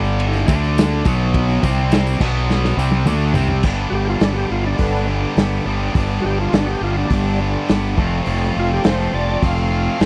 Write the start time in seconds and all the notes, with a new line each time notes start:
Already playing: G1 G2 D3 G3
0.05 tambourine
0.20 ride
0.33 snare, tambourine
0.48 D2 D3 A3 D4, kick, ride, tambourine
0.64 tambourine
0.78 snare, ride, tambourine
1.05 B1 B2 F#3 B3, kick, ride, tambourine
1.34 kick, ride
1.49 tambourine
1.63 C2 C3 G3 C4, kick, ride, tambourine
1.92 snare, ride, tambourine
2.07 tambourine
2.20 B1 B2 F#3 B3, kick, crash
2.50 snare, tambourine
2.64 snare, tambourine
2.77 C2 C3 G3 C4, tambourine
2.91 high tom
3.06 D2 D3 A3 D4, mid tom, tambourine
3.21 tambourine
3.34 C2 C3 G3 C4, floor tom, tambourine
3.48 floor tom
3.63 G1 G2 D3 G3 B3, kick, crash
3.67 D4
3.90 G1 G3 F#4
3.95 G4
4.10 F4
4.20 G1 B3 D4, snare, open hi-hat
4.32 F#4
4.37 G4
4.50 G1 G3 F4
4.67 D4
4.78 G1 D3 B3 D4, kick, open hi-hat
4.95 snare
5.09 G4
5.37 G1 B3, snare, open hi-hat
5.65 G1 G2 D3 G3 B3 D4
5.94 G1 G2 D3 G3 B3 D4, kick, open hi-hat
6.22 G1 G3 F#4
6.26 G4
6.41 F4
6.53 G1 B3 D4, snare, open hi-hat
6.65 F#4
6.69 G4
6.81 G1 G3 F4
6.98 D4
7.10 G1 G3 D4, kick, open hi-hat
7.39 G4
7.68 G1 B3, snare, open hi-hat
7.97 F1 F2 F3 A3 C4, kick
8.01 F4
8.26 F1 F2, open hi-hat
8.42 snare
8.56 F1 F3 F4
8.74 G4
8.84 F1 A3 C5, snare, open hi-hat
9.13 F1 F3 D5
9.42 F1 C4 F5, kick, open hi-hat
9.71 F4
9.99 F1 F3 A3 C4 F4, snare, open hi-hat